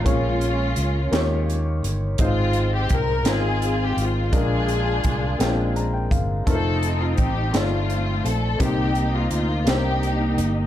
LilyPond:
<<
  \new Staff \with { instrumentName = "String section" } { \time 6/8 \key bes \mixolydian \tempo 4. = 56 << { f'2 r4 | f'8. g'16 bes'8 aes'8. g'16 f'8 | aes'2 r4 | a'8. f'16 g'8 f'4 a'8 |
g'8. f'16 f'8 g'4 r8 | } \\ { <aes des'>2 r4 | c'4. <c' f'>4. | <d' f'>2 r4 | <c' ees'>4. <a c'>4. |
<bes ees'>4. <bes ees'>4. | } >> }
  \new Staff \with { instrumentName = "Grand piano" } { \time 6/8 \key bes \mixolydian <bes des' f' aes' des''>4 r8 <bes ees' f' g' des''>4 r8 | <aes c' ees' f' c''>4 r8 <aes c' ees' f' bes' c''>4 r8 | <aes bes d' f' bes'>4 r8 <aes bes c' d' f' g''>4 r8 | <a c' ees' f' bes' c''>4 r8 <a c' ees' f' d''>4 r8 |
<bes c' ees' g' c''>4 r8 <bes c' d' ees' g' c''>4 r8 | }
  \new Staff \with { instrumentName = "Grand piano" } { \clef bass \time 6/8 \key bes \mixolydian bes,4. ees4. | aes,4. r4. | bes,4. r8 bes''16 g''16 f''8 | r2. |
c4. r4. | }
  \new Staff \with { instrumentName = "Fingered electric bass" } { \clef bass \time 6/8 \key bes \mixolydian bes,,4 des,8 ees,4 g,,8 | aes,,4 c,8 aes,,4 aes,,8 | bes,,4 c,8 bes,,4 g,,8 | f,,4 a,,8 g,,4 bes,,8 |
c,4 d,8 c,4 g,,8 | }
  \new DrumStaff \with { instrumentName = "Drums" } \drummode { \time 6/8 <hh bd>8 hh8 hh8 <hh sn>8 hh8 hh8 | <hh bd>8 hh8 <hh bd>8 <hh sn>8 hh8 hh8 | <hh bd>8 hh8 <hh bd>8 <hh sn>8 hh8 <hh bd>8 | <hh bd>8 hh8 <hh bd>8 <hh sn>8 hh8 hh8 |
<hh bd>8 hh8 hh8 <hh sn>8 hh8 hh8 | }
>>